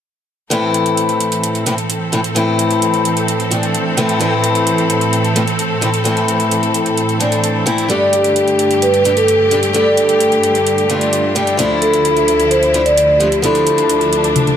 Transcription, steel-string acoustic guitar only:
0.50 A2 E3 A3 C4 E4
1.66 A2 E3 A3 C4 E4
2.12 A2 E3 A3 C4 E4
2.35 A2 E3 A3 C4 E4
3.51 A2 E3 A3 C4 D4
3.97 A2 E3 A3 C4 E4
4.19 A2 E3 A3 C4 E4
5.35 A2 E3 A3 C4 E4
5.81 A2 E3 A3 C4 E4
6.04 A2 E3 A3 C4 E4
7.20 A2 E3 A3 C4 D4
7.66 E3 A3 C4 E4
7.88 G2 G3 A3 D4 G4
9.04 G2 G3 A3 D4 G4
9.51 G2 G3 A3 D4 G4
9.73 G2 G3 A3 D4 G4
10.89 G2 G3 A3 D4 F4
11.35 G3 A3 D4 G4
11.57 F3 A3 D4 E4
12.74 F3 A3 D4 E4
13.20 F3 A3 D4 E4
13.42 F3 A3 D4 E4

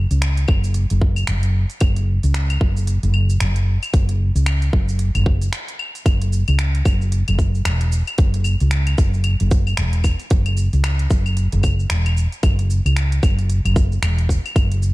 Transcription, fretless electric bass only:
0.11 C#2
0.49 F#1
0.91 F#1
1.28 F#1
1.81 F#1
2.24 C#2
2.61 F#1
3.03 F#1
3.41 F#1
3.94 F#1
4.35 C#2
4.73 F#1
5.15 F#1
6.06 F#1
6.48 C#2
6.86 F#1
7.28 F#1
7.65 E1
8.19 F#1
8.61 C#2
8.98 F#1
9.40 F#1
9.78 E1
10.31 F#1
10.73 C#2
11.11 F#1
11.53 F#1
11.90 E1
12.43 F#1
12.85 C#2
13.23 F#1
13.65 F#1
14.02 E1
14.56 F#1

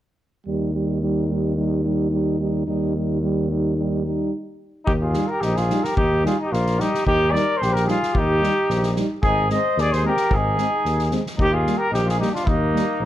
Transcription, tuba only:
0.47 D#2
2.68 D#2
4.87 D#2
5.42 A#1
5.97 D#2
6.53 A#1
7.07 D#2
7.62 A#1
8.16 D#2
8.70 A#1
9.24 G#1
9.77 D#2
10.30 G#1
10.85 D#2
11.39 D#2
11.92 A#1
12.47 D#2
13.00 A#1

